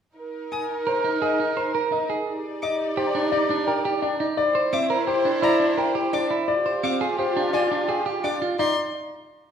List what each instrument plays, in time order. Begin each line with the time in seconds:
0.16 string section D#4 A#4, clarinet A#4
0.52 grand piano G#5, violin D#6
0.87 clean electric guitar A#4, grand piano C5
1.04 clean electric guitar D#4
1.22 clean electric guitar G#4, grand piano D#5
1.40 clean electric guitar D#4
1.57 clean electric guitar C5, grand piano A#5
1.75 clean electric guitar A#4
1.92 clean electric guitar D#4, grand piano D#5
2.10 clean electric guitar G#4
2.27 string section D#4 D5, clarinet G4
2.62 grand piano D#5, violin D6
2.97 clean electric guitar G4, grand piano C5
3.15 clean electric guitar D4
3.32 clean electric guitar D#4, grand piano D5
3.50 clean electric guitar D4
3.67 clean electric guitar A#4, grand piano G5
3.85 clean electric guitar G4
4.02 clean electric guitar D4, grand piano D5
4.20 clean electric guitar D#4
4.37 string section E4 C5, clarinet E4, grand piano D5
4.55 clean electric guitar C5
4.73 clean electric guitar C4, grand piano E5, violin D6
4.90 clean electric guitar A#4
5.07 clean electric guitar G4, grand piano C5
5.25 clean electric guitar D4
5.42 clean electric guitar E4, grand piano D5, violin A#5
5.60 clean electric guitar D4
5.77 clean electric guitar A#4, grand piano G5
5.95 clean electric guitar G4
6.13 clean electric guitar D4, grand piano D5, violin D6
6.31 clean electric guitar E4
6.48 clarinet F4, string section F4 G4, grand piano D5
6.66 clean electric guitar C5
6.83 clean electric guitar C4, grand piano F5, violin D6
7.01 clean electric guitar G#4
7.19 clean electric guitar G4, grand piano C5
7.37 clean electric guitar D4
7.53 clean electric guitar F4, grand piano D5, violin G#5
7.72 clean electric guitar D4
7.88 clean electric guitar G#4, grand piano G5
8.06 clean electric guitar G4
8.24 clean electric guitar D4, grand piano D5, violin D6
8.42 clean electric guitar F4
8.59 clean electric guitar D#4, grand piano D5, violin C6